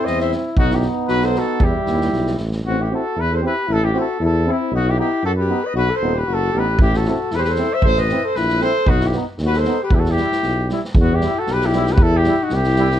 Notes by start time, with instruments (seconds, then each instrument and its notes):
Already playing: euphonium C4, trombone E4
0.05 tuba E2, alto saxophone C5, trumpet D#5, snare
0.19 alto saxophone C5, trumpet E5, snare
0.32 snare
0.57 tuba B1, euphonium B3, alto saxophone D#4, trombone D#4, trumpet F#4, kick
0.70 alto saxophone E4, trumpet G4, snare
0.82 snare
1.08 tuba B1, alto saxophone F#4, trumpet B4, snare
1.21 alto saxophone A4, trumpet C5, snare
1.35 alto saxophone F#4, trumpet A4, snare
1.60 tuba E2, euphonium G3, trombone E4, alto saxophone E4, trumpet G4, kick
1.86 tuba D#2, snare
2.01 snare
2.13 tuba B1, snare
2.27 snare
2.37 tuba A1, snare
2.51 snare
2.63 tuba A1, alto saxophone C4, trumpet F#4
2.81 alto saxophone E4, trumpet G4
2.91 euphonium C4, trombone E4, alto saxophone F#4
2.95 trumpet A4
3.16 tuba E2, alto saxophone E4, trumpet B4
3.32 alto saxophone A4, trumpet C5
3.41 euphonium C4, trombone E4, alto saxophone G4
3.46 trumpet B4
3.68 tuba A1, alto saxophone E4
3.73 trumpet A4
3.83 alto saxophone E4, trumpet G4
3.93 euphonium C4, trombone E4, alto saxophone F#4
4.00 trumpet A4
4.20 tuba E2, alto saxophone E4
4.25 trumpet A4
4.46 euphonium C4, alto saxophone C4, trombone E4
4.51 trumpet E4
4.71 tuba B1, alto saxophone D#4
4.76 trumpet F#4
4.88 alto saxophone E4, trumpet G4
4.97 euphonium B3, trombone D#4, alto saxophone E4, trumpet G4
5.23 tuba F#2, alto saxophone F#4, trumpet A4
5.37 alto saxophone G4, trumpet B4
5.48 euphonium B3, trombone D#4
5.64 alto saxophone B4, trumpet D#5
5.74 tuba B1, alto saxophone F#4, trumpet B4
5.90 alto saxophone A4
5.96 trumpet C5
6.01 tuba D#1, euphonium B3, trombone D#4
6.14 alto saxophone G4, trumpet B4
6.28 tuba F#1, alto saxophone F#4
6.34 trumpet A4
6.53 tuba A1, euphonium B3, trombone D#4, alto saxophone G4
6.58 trumpet B4
6.79 tuba A1, alto saxophone E4, trumpet G4, kick
6.93 alto saxophone F#4, trumpet A4, snare
7.05 euphonium C4, trombone E4, alto saxophone F#4, snare
7.10 trumpet A4
7.31 tuba E2, alto saxophone E4, snare
7.35 alto saxophone A4, trumpet B4 C5
7.40 alto saxophone G4, trumpet B4
7.44 snare
7.49 alto saxophone A4, trumpet C5
7.55 euphonium C4, trombone E4, snare
7.74 alto saxophone C5, trumpet E5
7.82 tuba A1, alto saxophone A4, trumpet C5, kick
7.96 alto saxophone B4, trumpet D#5, snare
8.09 euphonium C4, trombone E4, snare
8.24 alto saxophone A4, trumpet C5
8.35 tuba A#1, alto saxophone E4, trumpet B4, snare
8.49 snare
8.60 euphonium C4, trombone E4, alto saxophone A4, trumpet C5, snare
8.86 tuba B1, alto saxophone D#4, trumpet F#4, kick
9.00 alto saxophone E4, snare
9.06 trumpet G4
9.12 euphonium B3, trombone D#4, snare
9.38 tuba D#2, snare
9.45 alto saxophone F#4, trumpet B4
9.53 alto saxophone A4, snare
9.58 trumpet C5
9.64 euphonium B3, trombone D#4, snare
9.83 alto saxophone G4, trumpet B4
9.90 tuba E2, alto saxophone E4, kick
9.95 trumpet G4
9.99 alto saxophone F#4, trumpet A4
10.05 snare
10.10 alto saxophone E4, trumpet G4
10.17 euphonium G3, trombone E4, snare
10.32 snare
10.43 tuba B1, snare
10.69 euphonium G3, trombone E4, snare
10.84 snare
10.95 tuba E2, kick
11.00 alto saxophone B3, trumpet F#4
11.14 alto saxophone E4, trumpet G4
11.20 euphonium G3, snare
11.24 trombone E4
11.39 alto saxophone F#4, trumpet A4
11.46 tuba B1, snare
11.52 alto saxophone G4, trumpet B4
11.61 snare
11.66 alto saxophone E4, trumpet G4
11.72 euphonium G3, trombone E4, snare
11.86 snare
11.92 alto saxophone G4, trumpet B4
11.98 tuba E2, kick
12.02 alto saxophone E4, trumpet A4
12.17 alto saxophone E4, trumpet G4
12.23 euphonium G3, trombone E4, snare
12.43 alto saxophone D#4, trumpet F#4
12.49 tuba C2, snare
12.54 alto saxophone E4, trumpet G4
12.64 snare
12.76 euphonium G3, trombone E4, snare
12.91 snare